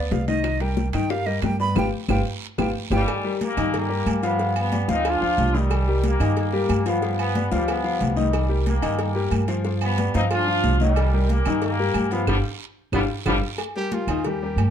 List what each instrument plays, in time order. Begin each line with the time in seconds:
Already playing: upright bass D2, upright piano B3 B4 D5, flute D5
0.11 upright bass C2, flute F5, high bongo, low bongo, high conga, high timbale, low timbale, short guiro
0.28 upright piano D#3 D#4 D#5, flute D#5, high bongo, high conga, high timbale, short guiro
0.44 high bongo, high conga, high timbale, long guiro, claves
0.60 upright piano G3 G4 A#4, flute G5, high bongo, high conga, high timbale
0.77 high bongo, high conga, short guiro
0.93 upright bass G2, upright piano D#3 D#4 D#5, flute G5, high bongo, low conga, high timbale, short guiro, claves
1.10 upright piano G3 G4 A#4, flute F5, high bongo, high conga, long guiro
1.26 upright piano G3 G4 A#4, flute D#5, high conga
1.42 upright bass G2, flute G5, high bongo, low bongo, high conga, high timbale, low timbale, short guiro, claves
1.60 upright piano B3 B4 D5, flute B5, high bongo, high conga, short guiro
1.75 upright bass G1, upright piano F4 G4 B4, flute G5, low bongo, high conga, high timbale, long guiro, claves
2.08 upright bass G1, upright piano F4 G4 B4, flute G5, low bongo, high conga, high timbale, long guiro, claves
2.58 upright bass G1, upright piano F4 G4 B4, flute G5, low bongo, high conga, high timbale, long guiro, claves
2.90 upright bass G1, trombone section D#3, upright piano F4 G4 B4, flute G5, low bongo, high conga, high timbale, long guiro, claves
2.94 trombone section G3
3.08 cowbell, low agogo, long guiro, claves
3.24 upright piano G3 G4 A#4, high conga
3.41 trombone section G3 A#3, cowbell, high conga, low agogo, short guiro
3.57 upright bass G2, upright piano D#3 D#4 D#5, cowbell, low conga, low agogo, short guiro, claves
3.74 trombone section G3 A#3, cowbell, high conga, low conga, low agogo, long guiro
3.89 upright piano G3 G4 A#4, high conga
4.06 upright bass G2, cowbell, high conga, low agogo, short guiro, claves
4.23 upright piano F3 F4 F5, trombone section G3 B3, cowbell, low agogo, short guiro
4.39 upright piano F3 F4 F5, cowbell, high conga, long guiro
4.56 trombone section G3 B3, high conga, low agogo, claves
4.72 upright piano B3 B4 D5, cowbell, high conga, low agogo, short guiro
4.88 upright bass D2, upright piano F3 F4 F5, trombone section C4 D#4, cowbell, high conga, short guiro
5.05 trombone section D4 F4, cowbell, high conga, low agogo, long guiro, claves
5.21 upright bass D2, upright piano F3 F4 F5, high conga
5.38 upright bass C2, cowbell, high conga, low timbale, low agogo, short guiro
5.54 upright piano D#3 D#4 D#5, trombone section D#3 G3, high conga, short guiro
5.71 cowbell, high conga, low agogo, long guiro, claves
5.88 upright piano G3 G4 A#4, high conga
6.04 trombone section G3 A#3, cowbell, high conga, low agogo, short guiro
6.20 upright bass G2, upright piano D#3 D#4 D#5, cowbell, low conga, low agogo, short guiro, claves
6.36 trombone section G3 A#3, cowbell, high conga, low agogo, long guiro
6.53 upright piano G3 G4 A#4, high conga
6.69 upright bass G2, cowbell, high conga, low agogo, short guiro, claves
6.86 upright piano F3 F4 F5, trombone section G3 B3, cowbell, low agogo, short guiro
7.02 upright piano F3 F4 F5, cowbell, high conga, long guiro
7.19 trombone section G3 B3, high conga, low agogo, claves
7.35 upright piano B3 B4 D5, cowbell, high conga, low agogo, short guiro
7.51 upright bass D2, trombone section D#3 G3, upright piano F3 F4 F5, cowbell, high conga, short guiro
7.68 trombone section G3 B3, cowbell, high conga, low agogo, long guiro, claves
7.84 upright piano F3 F4 F5, high conga
8.01 upright bass C2, cowbell, high conga, low timbale, low agogo, short guiro
8.16 upright piano D#3 D#4 D#5, trombone section D#3 G3, high conga, short guiro
8.33 cowbell, high conga, low agogo, long guiro, claves
8.49 upright piano G3 G4 A#4, high conga
8.66 trombone section G3 A#3, cowbell, high conga, low agogo, short guiro
8.82 upright bass G2, upright piano D#3 D#4 D#5, cowbell, low conga, low agogo, short guiro, claves
8.99 trombone section G3 A#3, cowbell, high conga, low agogo, long guiro
9.15 upright piano G3 G4 A#4, high conga
9.31 upright bass G2, cowbell, high conga, low agogo, short guiro, claves
9.48 upright piano F3 F4 F5, cowbell, high conga, low agogo, short guiro
9.64 upright piano F3 F4 F5, cowbell, high conga, long guiro
9.81 trombone section G3 B3, high conga, low agogo, claves
9.98 upright piano B3 B4 D5, cowbell, high conga, low agogo, short guiro
10.14 upright bass G2, upright piano F3 F4 F5, trombone section C4 D#4, cowbell, high conga, short guiro
10.31 trombone section D4 F4, cowbell, high conga, low agogo, long guiro, claves
10.47 upright piano F3 F4 F5, high conga
10.63 upright bass C2, cowbell, high conga, low timbale, low agogo, short guiro
10.80 upright piano D#3 D#4 D#5, trombone section D#3 G3, high conga, short guiro
10.96 cowbell, low agogo, long guiro, claves
11.14 upright piano G3 G4 A#4, high conga
11.28 trombone section G3 A#3, cowbell, high conga, low agogo, short guiro
11.45 upright bass G2, upright piano D#3 D#4 D#5, cowbell, low conga, low agogo, short guiro, claves
11.62 trombone section G3 A#3, cowbell, high conga, low agogo, long guiro
11.80 upright piano G3 G4 A#4, high conga
11.94 upright bass G2, cowbell, high conga, low agogo, short guiro, claves
12.11 upright piano F3 F4 F5, trombone section G3 B3, cowbell, high conga, low agogo, short guiro
12.27 upright bass G1, trombone section F3 G3 B3, upright piano D4 F4 G4, cowbell, low conga, high timbale, long guiro, claves
12.92 upright bass G1, trombone section F3 G3 B3, upright piano D4 F4 G4, cowbell, low conga, high timbale, long guiro, claves
13.26 upright bass G1, trombone section F3 G3 B3, upright piano D4 F4 G4, cowbell, low conga, high timbale, long guiro, claves
13.58 cowbell, high conga, low agogo, claves
13.76 upright piano G3 G4 A#4, trumpet G4, high conga
13.91 trumpet F4, cowbell, high conga, low agogo
14.07 upright bass D#2, upright piano D#3 D#4 D#5, cowbell, low conga, low agogo, claves
14.24 upright piano G3 G4 A#4, trumpet G4, cowbell, high conga, low conga, low agogo
14.42 upright piano G3 G4 A#4, high conga
14.56 upright bass G2, cowbell, high conga, low timbale, low agogo, claves